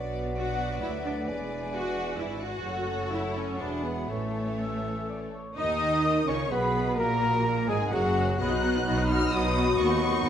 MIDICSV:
0, 0, Header, 1, 13, 480
1, 0, Start_track
1, 0, Tempo, 459418
1, 1337, Time_signature, 3, 2, 24, 8
1, 2781, Tempo, 473934
1, 3741, Tempo, 493827
1, 5661, Tempo, 470219
1, 8541, Tempo, 458365
1, 10516, End_track
2, 0, Start_track
2, 0, Title_t, "Flute"
2, 0, Program_c, 0, 73
2, 0, Note_on_c, 0, 78, 63
2, 1343, Note_on_c, 0, 80, 58
2, 1359, Note_off_c, 0, 78, 0
2, 2490, Note_off_c, 0, 80, 0
2, 2785, Note_on_c, 0, 78, 57
2, 3739, Note_on_c, 0, 76, 57
2, 3754, Note_off_c, 0, 78, 0
2, 5427, Note_off_c, 0, 76, 0
2, 5655, Note_on_c, 0, 87, 98
2, 6334, Note_off_c, 0, 87, 0
2, 6365, Note_on_c, 0, 85, 64
2, 6426, Note_off_c, 0, 85, 0
2, 6609, Note_on_c, 0, 83, 74
2, 7078, Note_off_c, 0, 83, 0
2, 7084, Note_on_c, 0, 82, 86
2, 7791, Note_off_c, 0, 82, 0
2, 7797, Note_on_c, 0, 80, 78
2, 8041, Note_on_c, 0, 78, 83
2, 8057, Note_off_c, 0, 80, 0
2, 8532, Note_off_c, 0, 78, 0
2, 8538, Note_on_c, 0, 83, 86
2, 10516, Note_off_c, 0, 83, 0
2, 10516, End_track
3, 0, Start_track
3, 0, Title_t, "Violin section"
3, 0, Program_c, 1, 48
3, 390, Note_on_c, 1, 78, 70
3, 830, Note_off_c, 1, 78, 0
3, 866, Note_on_c, 1, 76, 62
3, 1097, Note_off_c, 1, 76, 0
3, 1107, Note_on_c, 1, 74, 57
3, 1342, Note_off_c, 1, 74, 0
3, 1814, Note_on_c, 1, 78, 81
3, 2261, Note_off_c, 1, 78, 0
3, 2299, Note_on_c, 1, 76, 65
3, 2536, Note_on_c, 1, 78, 67
3, 2538, Note_off_c, 1, 76, 0
3, 3256, Note_off_c, 1, 78, 0
3, 3263, Note_on_c, 1, 76, 62
3, 3344, Note_off_c, 1, 76, 0
3, 3501, Note_on_c, 1, 73, 59
3, 3582, Note_off_c, 1, 73, 0
3, 3733, Note_on_c, 1, 74, 63
3, 3811, Note_off_c, 1, 74, 0
3, 3967, Note_on_c, 1, 71, 50
3, 4045, Note_off_c, 1, 71, 0
3, 4217, Note_on_c, 1, 69, 50
3, 5400, Note_off_c, 1, 69, 0
3, 5650, Note_on_c, 1, 87, 80
3, 6332, Note_off_c, 1, 87, 0
3, 6368, Note_on_c, 1, 85, 85
3, 6610, Note_off_c, 1, 85, 0
3, 6611, Note_on_c, 1, 83, 87
3, 7079, Note_on_c, 1, 82, 88
3, 7091, Note_off_c, 1, 83, 0
3, 7789, Note_off_c, 1, 82, 0
3, 7803, Note_on_c, 1, 80, 97
3, 8031, Note_on_c, 1, 78, 98
3, 8046, Note_off_c, 1, 80, 0
3, 8523, Note_off_c, 1, 78, 0
3, 8537, Note_on_c, 1, 90, 97
3, 9252, Note_off_c, 1, 90, 0
3, 9252, Note_on_c, 1, 89, 119
3, 9497, Note_off_c, 1, 89, 0
3, 9501, Note_on_c, 1, 87, 116
3, 9976, Note_on_c, 1, 85, 119
3, 9984, Note_off_c, 1, 87, 0
3, 10516, Note_off_c, 1, 85, 0
3, 10516, End_track
4, 0, Start_track
4, 0, Title_t, "Violin section"
4, 0, Program_c, 2, 48
4, 0, Note_on_c, 2, 66, 53
4, 0, Note_on_c, 2, 74, 55
4, 351, Note_off_c, 2, 66, 0
4, 352, Note_off_c, 2, 74, 0
4, 376, Note_on_c, 2, 66, 56
4, 385, Note_on_c, 2, 74, 60
4, 1317, Note_off_c, 2, 66, 0
4, 1321, Note_off_c, 2, 74, 0
4, 1338, Note_on_c, 2, 74, 55
4, 1345, Note_on_c, 2, 68, 55
4, 2277, Note_off_c, 2, 74, 0
4, 2293, Note_off_c, 2, 68, 0
4, 2302, Note_on_c, 2, 74, 56
4, 2305, Note_on_c, 2, 68, 53
4, 2774, Note_off_c, 2, 74, 0
4, 2776, Note_off_c, 2, 68, 0
4, 2782, Note_on_c, 2, 73, 58
4, 2783, Note_on_c, 2, 69, 55
4, 3741, Note_off_c, 2, 73, 0
4, 3742, Note_off_c, 2, 69, 0
4, 3745, Note_on_c, 2, 78, 49
4, 3749, Note_on_c, 2, 68, 50
4, 4218, Note_off_c, 2, 68, 0
4, 4221, Note_on_c, 2, 73, 49
4, 4223, Note_on_c, 2, 69, 50
4, 4225, Note_off_c, 2, 78, 0
4, 5461, Note_off_c, 2, 73, 0
4, 5462, Note_off_c, 2, 69, 0
4, 5660, Note_on_c, 2, 75, 87
4, 6337, Note_off_c, 2, 75, 0
4, 6384, Note_on_c, 2, 73, 70
4, 6603, Note_on_c, 2, 71, 76
4, 6619, Note_off_c, 2, 73, 0
4, 7087, Note_off_c, 2, 71, 0
4, 7090, Note_on_c, 2, 70, 86
4, 7795, Note_off_c, 2, 70, 0
4, 7808, Note_on_c, 2, 68, 79
4, 8043, Note_off_c, 2, 68, 0
4, 8043, Note_on_c, 2, 66, 87
4, 8526, Note_on_c, 2, 78, 63
4, 8527, Note_on_c, 2, 75, 69
4, 8529, Note_off_c, 2, 66, 0
4, 8644, Note_off_c, 2, 75, 0
4, 8648, Note_off_c, 2, 78, 0
4, 8656, Note_on_c, 2, 75, 58
4, 8660, Note_on_c, 2, 71, 61
4, 8764, Note_off_c, 2, 75, 0
4, 8776, Note_on_c, 2, 75, 67
4, 8781, Note_on_c, 2, 78, 66
4, 8784, Note_off_c, 2, 71, 0
4, 8889, Note_off_c, 2, 75, 0
4, 8902, Note_on_c, 2, 71, 61
4, 8902, Note_on_c, 2, 75, 58
4, 8904, Note_off_c, 2, 78, 0
4, 9011, Note_off_c, 2, 75, 0
4, 9023, Note_on_c, 2, 75, 69
4, 9025, Note_off_c, 2, 71, 0
4, 9025, Note_on_c, 2, 78, 69
4, 9137, Note_off_c, 2, 75, 0
4, 9138, Note_off_c, 2, 78, 0
4, 9154, Note_on_c, 2, 75, 65
4, 9161, Note_on_c, 2, 71, 60
4, 9260, Note_off_c, 2, 75, 0
4, 9272, Note_on_c, 2, 75, 69
4, 9272, Note_on_c, 2, 78, 62
4, 9275, Note_off_c, 2, 71, 0
4, 9377, Note_off_c, 2, 75, 0
4, 9390, Note_on_c, 2, 75, 64
4, 9391, Note_off_c, 2, 78, 0
4, 9395, Note_on_c, 2, 71, 67
4, 9494, Note_off_c, 2, 75, 0
4, 9503, Note_on_c, 2, 78, 70
4, 9506, Note_on_c, 2, 75, 72
4, 9513, Note_off_c, 2, 71, 0
4, 9610, Note_off_c, 2, 75, 0
4, 9619, Note_off_c, 2, 78, 0
4, 9620, Note_on_c, 2, 71, 65
4, 9622, Note_on_c, 2, 75, 65
4, 9738, Note_off_c, 2, 75, 0
4, 9746, Note_off_c, 2, 71, 0
4, 9749, Note_on_c, 2, 78, 67
4, 9750, Note_on_c, 2, 75, 66
4, 9844, Note_off_c, 2, 75, 0
4, 9856, Note_on_c, 2, 75, 70
4, 9861, Note_on_c, 2, 71, 63
4, 9869, Note_off_c, 2, 78, 0
4, 9958, Note_off_c, 2, 75, 0
4, 9971, Note_on_c, 2, 75, 74
4, 9973, Note_on_c, 2, 78, 81
4, 9985, Note_off_c, 2, 71, 0
4, 10075, Note_off_c, 2, 75, 0
4, 10088, Note_on_c, 2, 75, 66
4, 10091, Note_off_c, 2, 78, 0
4, 10094, Note_on_c, 2, 71, 65
4, 10207, Note_off_c, 2, 75, 0
4, 10213, Note_on_c, 2, 78, 68
4, 10219, Note_off_c, 2, 71, 0
4, 10220, Note_on_c, 2, 75, 69
4, 10323, Note_off_c, 2, 75, 0
4, 10335, Note_on_c, 2, 75, 68
4, 10336, Note_on_c, 2, 71, 69
4, 10338, Note_off_c, 2, 78, 0
4, 10453, Note_off_c, 2, 75, 0
4, 10459, Note_off_c, 2, 71, 0
4, 10462, Note_on_c, 2, 78, 73
4, 10465, Note_on_c, 2, 75, 75
4, 10516, Note_off_c, 2, 75, 0
4, 10516, Note_off_c, 2, 78, 0
4, 10516, End_track
5, 0, Start_track
5, 0, Title_t, "Cor anglais"
5, 0, Program_c, 3, 69
5, 0, Note_on_c, 3, 74, 61
5, 2602, Note_off_c, 3, 74, 0
5, 2779, Note_on_c, 3, 73, 58
5, 3741, Note_on_c, 3, 71, 47
5, 3755, Note_off_c, 3, 73, 0
5, 4214, Note_off_c, 3, 71, 0
5, 4220, Note_on_c, 3, 73, 51
5, 4651, Note_off_c, 3, 73, 0
5, 4706, Note_on_c, 3, 76, 63
5, 5154, Note_off_c, 3, 76, 0
5, 5184, Note_on_c, 3, 74, 53
5, 5292, Note_off_c, 3, 74, 0
5, 5418, Note_on_c, 3, 73, 55
5, 5646, Note_off_c, 3, 73, 0
5, 5652, Note_on_c, 3, 75, 89
5, 6333, Note_off_c, 3, 75, 0
5, 6371, Note_on_c, 3, 73, 70
5, 6593, Note_off_c, 3, 73, 0
5, 6599, Note_on_c, 3, 71, 76
5, 7075, Note_off_c, 3, 71, 0
5, 7090, Note_on_c, 3, 70, 95
5, 7791, Note_off_c, 3, 70, 0
5, 7798, Note_on_c, 3, 68, 76
5, 7908, Note_off_c, 3, 68, 0
5, 8049, Note_on_c, 3, 66, 79
5, 8532, Note_off_c, 3, 66, 0
5, 8552, Note_on_c, 3, 75, 78
5, 10516, Note_off_c, 3, 75, 0
5, 10516, End_track
6, 0, Start_track
6, 0, Title_t, "Clarinet"
6, 0, Program_c, 4, 71
6, 0, Note_on_c, 4, 71, 59
6, 2608, Note_off_c, 4, 71, 0
6, 2786, Note_on_c, 4, 69, 53
6, 3732, Note_on_c, 4, 68, 45
6, 3747, Note_off_c, 4, 69, 0
6, 4214, Note_on_c, 4, 69, 48
6, 4228, Note_off_c, 4, 68, 0
6, 5423, Note_off_c, 4, 69, 0
6, 5657, Note_on_c, 4, 75, 96
6, 6385, Note_on_c, 4, 73, 72
6, 6400, Note_off_c, 4, 75, 0
6, 6610, Note_on_c, 4, 71, 74
6, 6626, Note_off_c, 4, 73, 0
6, 7076, Note_off_c, 4, 71, 0
6, 7082, Note_on_c, 4, 70, 92
6, 7813, Note_on_c, 4, 68, 77
6, 7828, Note_off_c, 4, 70, 0
6, 8054, Note_on_c, 4, 66, 81
6, 8069, Note_off_c, 4, 68, 0
6, 8529, Note_off_c, 4, 66, 0
6, 8535, Note_on_c, 4, 66, 79
6, 10516, Note_off_c, 4, 66, 0
6, 10516, End_track
7, 0, Start_track
7, 0, Title_t, "Trumpet"
7, 0, Program_c, 5, 56
7, 5657, Note_on_c, 5, 75, 89
7, 6336, Note_off_c, 5, 75, 0
7, 6373, Note_on_c, 5, 73, 67
7, 6481, Note_off_c, 5, 73, 0
7, 6613, Note_on_c, 5, 71, 77
7, 7082, Note_off_c, 5, 71, 0
7, 7088, Note_on_c, 5, 70, 95
7, 7794, Note_off_c, 5, 70, 0
7, 7808, Note_on_c, 5, 68, 72
7, 8046, Note_on_c, 5, 66, 81
7, 8061, Note_off_c, 5, 68, 0
7, 8538, Note_off_c, 5, 66, 0
7, 8544, Note_on_c, 5, 63, 78
7, 9470, Note_off_c, 5, 63, 0
7, 9511, Note_on_c, 5, 63, 80
7, 9980, Note_off_c, 5, 63, 0
7, 9984, Note_on_c, 5, 63, 92
7, 10516, Note_off_c, 5, 63, 0
7, 10516, End_track
8, 0, Start_track
8, 0, Title_t, "French horn section"
8, 0, Program_c, 6, 60
8, 0, Note_on_c, 6, 54, 53
8, 0, Note_on_c, 6, 62, 52
8, 1288, Note_off_c, 6, 54, 0
8, 1333, Note_on_c, 6, 56, 57
8, 2593, Note_off_c, 6, 56, 0
8, 2593, Note_off_c, 6, 62, 0
8, 2771, Note_on_c, 6, 61, 55
8, 2778, Note_on_c, 6, 57, 50
8, 3695, Note_off_c, 6, 61, 0
8, 3699, Note_off_c, 6, 57, 0
8, 3723, Note_on_c, 6, 66, 51
8, 3724, Note_on_c, 6, 56, 54
8, 4212, Note_on_c, 6, 61, 49
8, 4215, Note_off_c, 6, 56, 0
8, 4215, Note_off_c, 6, 66, 0
8, 4215, Note_on_c, 6, 57, 46
8, 5398, Note_off_c, 6, 61, 0
8, 5423, Note_off_c, 6, 57, 0
8, 6137, Note_on_c, 6, 70, 75
8, 6581, Note_off_c, 6, 70, 0
8, 6601, Note_on_c, 6, 68, 73
8, 7085, Note_off_c, 6, 68, 0
8, 7094, Note_on_c, 6, 66, 70
8, 7572, Note_off_c, 6, 66, 0
8, 7579, Note_on_c, 6, 70, 78
8, 8048, Note_on_c, 6, 68, 85
8, 8053, Note_off_c, 6, 70, 0
8, 8520, Note_on_c, 6, 66, 80
8, 8531, Note_off_c, 6, 68, 0
8, 9007, Note_off_c, 6, 66, 0
8, 9018, Note_on_c, 6, 63, 81
8, 9496, Note_off_c, 6, 63, 0
8, 9498, Note_on_c, 6, 66, 96
8, 10434, Note_off_c, 6, 66, 0
8, 10447, Note_on_c, 6, 66, 92
8, 10516, Note_off_c, 6, 66, 0
8, 10516, End_track
9, 0, Start_track
9, 0, Title_t, "Viola section"
9, 0, Program_c, 7, 48
9, 379, Note_on_c, 7, 66, 79
9, 824, Note_off_c, 7, 66, 0
9, 857, Note_on_c, 7, 64, 70
9, 941, Note_off_c, 7, 64, 0
9, 1107, Note_on_c, 7, 62, 61
9, 1191, Note_off_c, 7, 62, 0
9, 1819, Note_on_c, 7, 66, 79
9, 2264, Note_off_c, 7, 66, 0
9, 2297, Note_on_c, 7, 64, 66
9, 2532, Note_on_c, 7, 66, 77
9, 2538, Note_off_c, 7, 64, 0
9, 3240, Note_off_c, 7, 66, 0
9, 3247, Note_on_c, 7, 64, 76
9, 3492, Note_off_c, 7, 64, 0
9, 3495, Note_on_c, 7, 61, 69
9, 3740, Note_off_c, 7, 61, 0
9, 3741, Note_on_c, 7, 62, 72
9, 3971, Note_on_c, 7, 59, 62
9, 3980, Note_off_c, 7, 62, 0
9, 4215, Note_on_c, 7, 57, 65
9, 4219, Note_off_c, 7, 59, 0
9, 5399, Note_off_c, 7, 57, 0
9, 5648, Note_on_c, 7, 63, 90
9, 6331, Note_off_c, 7, 63, 0
9, 6376, Note_on_c, 7, 61, 65
9, 6610, Note_off_c, 7, 61, 0
9, 6613, Note_on_c, 7, 59, 83
9, 7082, Note_off_c, 7, 59, 0
9, 7085, Note_on_c, 7, 58, 83
9, 7799, Note_on_c, 7, 56, 82
9, 7806, Note_off_c, 7, 58, 0
9, 7881, Note_off_c, 7, 56, 0
9, 8044, Note_on_c, 7, 54, 80
9, 8530, Note_off_c, 7, 54, 0
9, 8539, Note_on_c, 7, 66, 73
9, 8542, Note_on_c, 7, 59, 65
9, 8656, Note_off_c, 7, 66, 0
9, 8657, Note_off_c, 7, 59, 0
9, 8666, Note_on_c, 7, 63, 62
9, 8668, Note_off_c, 7, 63, 0
9, 8668, Note_on_c, 7, 63, 59
9, 8788, Note_off_c, 7, 63, 0
9, 8788, Note_on_c, 7, 59, 67
9, 8789, Note_on_c, 7, 66, 64
9, 8908, Note_off_c, 7, 59, 0
9, 8908, Note_off_c, 7, 66, 0
9, 8908, Note_on_c, 7, 63, 56
9, 8912, Note_off_c, 7, 63, 0
9, 8912, Note_on_c, 7, 63, 64
9, 9025, Note_on_c, 7, 59, 68
9, 9026, Note_on_c, 7, 66, 68
9, 9030, Note_off_c, 7, 63, 0
9, 9138, Note_off_c, 7, 59, 0
9, 9139, Note_off_c, 7, 66, 0
9, 9145, Note_on_c, 7, 63, 65
9, 9146, Note_off_c, 7, 63, 0
9, 9146, Note_on_c, 7, 63, 62
9, 9268, Note_off_c, 7, 63, 0
9, 9270, Note_on_c, 7, 59, 66
9, 9271, Note_on_c, 7, 66, 66
9, 9381, Note_on_c, 7, 63, 67
9, 9383, Note_off_c, 7, 63, 0
9, 9383, Note_on_c, 7, 63, 66
9, 9391, Note_off_c, 7, 59, 0
9, 9391, Note_off_c, 7, 66, 0
9, 9506, Note_on_c, 7, 66, 67
9, 9508, Note_off_c, 7, 63, 0
9, 9510, Note_on_c, 7, 59, 67
9, 9620, Note_off_c, 7, 66, 0
9, 9622, Note_off_c, 7, 59, 0
9, 9640, Note_on_c, 7, 63, 56
9, 9643, Note_off_c, 7, 63, 0
9, 9643, Note_on_c, 7, 63, 60
9, 9752, Note_on_c, 7, 66, 66
9, 9754, Note_on_c, 7, 59, 66
9, 9757, Note_off_c, 7, 63, 0
9, 9868, Note_on_c, 7, 63, 64
9, 9871, Note_off_c, 7, 66, 0
9, 9872, Note_off_c, 7, 59, 0
9, 9874, Note_off_c, 7, 63, 0
9, 9874, Note_on_c, 7, 63, 70
9, 9983, Note_on_c, 7, 66, 77
9, 9985, Note_on_c, 7, 59, 79
9, 9991, Note_off_c, 7, 63, 0
9, 10096, Note_off_c, 7, 66, 0
9, 10097, Note_off_c, 7, 59, 0
9, 10097, Note_on_c, 7, 63, 64
9, 10099, Note_off_c, 7, 63, 0
9, 10099, Note_on_c, 7, 63, 66
9, 10221, Note_off_c, 7, 63, 0
9, 10229, Note_on_c, 7, 59, 69
9, 10229, Note_on_c, 7, 66, 69
9, 10344, Note_on_c, 7, 63, 72
9, 10346, Note_off_c, 7, 59, 0
9, 10346, Note_off_c, 7, 66, 0
9, 10347, Note_off_c, 7, 63, 0
9, 10347, Note_on_c, 7, 63, 65
9, 10457, Note_on_c, 7, 59, 75
9, 10462, Note_on_c, 7, 66, 80
9, 10464, Note_off_c, 7, 63, 0
9, 10516, Note_off_c, 7, 59, 0
9, 10516, Note_off_c, 7, 66, 0
9, 10516, End_track
10, 0, Start_track
10, 0, Title_t, "Bassoon"
10, 0, Program_c, 8, 70
10, 0, Note_on_c, 8, 54, 56
10, 1334, Note_on_c, 8, 52, 56
10, 1350, Note_off_c, 8, 54, 0
10, 2605, Note_off_c, 8, 52, 0
10, 2783, Note_on_c, 8, 54, 51
10, 4196, Note_off_c, 8, 54, 0
10, 4233, Note_on_c, 8, 52, 47
10, 5408, Note_off_c, 8, 52, 0
10, 5655, Note_on_c, 8, 63, 93
10, 6334, Note_off_c, 8, 63, 0
10, 6375, Note_on_c, 8, 61, 67
10, 6483, Note_off_c, 8, 61, 0
10, 6614, Note_on_c, 8, 59, 87
10, 7099, Note_on_c, 8, 58, 83
10, 7115, Note_off_c, 8, 59, 0
10, 7807, Note_off_c, 8, 58, 0
10, 7814, Note_on_c, 8, 56, 80
10, 8056, Note_on_c, 8, 54, 82
10, 8071, Note_off_c, 8, 56, 0
10, 8541, Note_off_c, 8, 54, 0
10, 8547, Note_on_c, 8, 54, 73
10, 10516, Note_off_c, 8, 54, 0
10, 10516, End_track
11, 0, Start_track
11, 0, Title_t, "Trombone section"
11, 0, Program_c, 10, 61
11, 5663, Note_on_c, 10, 51, 92
11, 6338, Note_off_c, 10, 51, 0
11, 6378, Note_on_c, 10, 49, 75
11, 6616, Note_off_c, 10, 49, 0
11, 6616, Note_on_c, 10, 47, 92
11, 7086, Note_on_c, 10, 46, 90
11, 7093, Note_off_c, 10, 47, 0
11, 7788, Note_on_c, 10, 44, 85
11, 7793, Note_off_c, 10, 46, 0
11, 8033, Note_off_c, 10, 44, 0
11, 8040, Note_on_c, 10, 42, 90
11, 8512, Note_on_c, 10, 54, 76
11, 8512, Note_on_c, 10, 59, 82
11, 8538, Note_off_c, 10, 42, 0
11, 9453, Note_off_c, 10, 54, 0
11, 9453, Note_off_c, 10, 59, 0
11, 9497, Note_on_c, 10, 59, 88
11, 9502, Note_on_c, 10, 54, 87
11, 9948, Note_off_c, 10, 54, 0
11, 9951, Note_off_c, 10, 59, 0
11, 9961, Note_on_c, 10, 54, 90
11, 9964, Note_on_c, 10, 59, 90
11, 10516, Note_off_c, 10, 54, 0
11, 10516, Note_off_c, 10, 59, 0
11, 10516, End_track
12, 0, Start_track
12, 0, Title_t, "Cello section"
12, 0, Program_c, 11, 48
12, 0, Note_on_c, 11, 47, 57
12, 815, Note_off_c, 11, 47, 0
12, 850, Note_on_c, 11, 38, 55
12, 1333, Note_off_c, 11, 38, 0
12, 1335, Note_on_c, 11, 40, 52
12, 2295, Note_off_c, 11, 40, 0
12, 2298, Note_on_c, 11, 44, 52
12, 2780, Note_on_c, 11, 42, 51
12, 2781, Note_off_c, 11, 44, 0
12, 3721, Note_off_c, 11, 42, 0
12, 3736, Note_on_c, 11, 40, 54
12, 4211, Note_off_c, 11, 40, 0
12, 4211, Note_on_c, 11, 45, 47
12, 5456, Note_off_c, 11, 45, 0
12, 5647, Note_on_c, 11, 51, 80
12, 6330, Note_off_c, 11, 51, 0
12, 6362, Note_on_c, 11, 49, 66
12, 6602, Note_off_c, 11, 49, 0
12, 6611, Note_on_c, 11, 47, 79
12, 7080, Note_on_c, 11, 46, 84
12, 7081, Note_off_c, 11, 47, 0
12, 7804, Note_off_c, 11, 46, 0
12, 7811, Note_on_c, 11, 44, 75
12, 8050, Note_off_c, 11, 44, 0
12, 8055, Note_on_c, 11, 42, 86
12, 8535, Note_off_c, 11, 42, 0
12, 8549, Note_on_c, 11, 47, 83
12, 8975, Note_off_c, 11, 47, 0
12, 9027, Note_on_c, 11, 47, 81
12, 9453, Note_off_c, 11, 47, 0
12, 9513, Note_on_c, 11, 47, 90
12, 9934, Note_off_c, 11, 47, 0
12, 9981, Note_on_c, 11, 39, 97
12, 10403, Note_off_c, 11, 39, 0
12, 10450, Note_on_c, 11, 39, 92
12, 10516, Note_off_c, 11, 39, 0
12, 10516, End_track
13, 0, Start_track
13, 0, Title_t, "Double bass section"
13, 0, Program_c, 12, 48
13, 0, Note_on_c, 12, 35, 52
13, 818, Note_off_c, 12, 35, 0
13, 866, Note_on_c, 12, 38, 54
13, 1334, Note_on_c, 12, 28, 57
13, 1341, Note_off_c, 12, 38, 0
13, 2293, Note_on_c, 12, 32, 52
13, 2294, Note_off_c, 12, 28, 0
13, 2772, Note_on_c, 12, 30, 55
13, 2779, Note_off_c, 12, 32, 0
13, 3717, Note_off_c, 12, 30, 0
13, 3734, Note_on_c, 12, 28, 51
13, 4210, Note_off_c, 12, 28, 0
13, 4220, Note_on_c, 12, 33, 52
13, 5461, Note_off_c, 12, 33, 0
13, 5652, Note_on_c, 12, 39, 85
13, 6333, Note_off_c, 12, 39, 0
13, 6370, Note_on_c, 12, 37, 65
13, 6605, Note_on_c, 12, 35, 76
13, 6607, Note_off_c, 12, 37, 0
13, 7078, Note_off_c, 12, 35, 0
13, 7091, Note_on_c, 12, 34, 83
13, 7809, Note_off_c, 12, 34, 0
13, 7810, Note_on_c, 12, 32, 79
13, 8037, Note_on_c, 12, 30, 83
13, 8049, Note_off_c, 12, 32, 0
13, 8526, Note_off_c, 12, 30, 0
13, 8539, Note_on_c, 12, 35, 88
13, 8969, Note_off_c, 12, 35, 0
13, 9031, Note_on_c, 12, 35, 89
13, 9456, Note_off_c, 12, 35, 0
13, 9508, Note_on_c, 12, 35, 88
13, 9932, Note_off_c, 12, 35, 0
13, 9991, Note_on_c, 12, 39, 88
13, 10408, Note_off_c, 12, 39, 0
13, 10460, Note_on_c, 12, 39, 96
13, 10516, Note_off_c, 12, 39, 0
13, 10516, End_track
0, 0, End_of_file